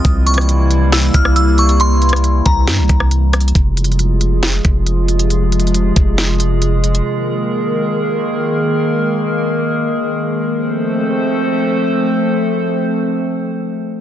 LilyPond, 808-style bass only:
\new Staff \with { instrumentName = "808-style bass" } { \clef bass \time 4/4 \key f \minor \tempo 4 = 137 c,2~ c,8 c,4.~ | c,4. c,8 g,16 c,16 c,4. | f,,2~ f,,8 f,,4.~ | f,,4. f,,2~ f,,8 |
r1 | r1 | r1 | r1 | }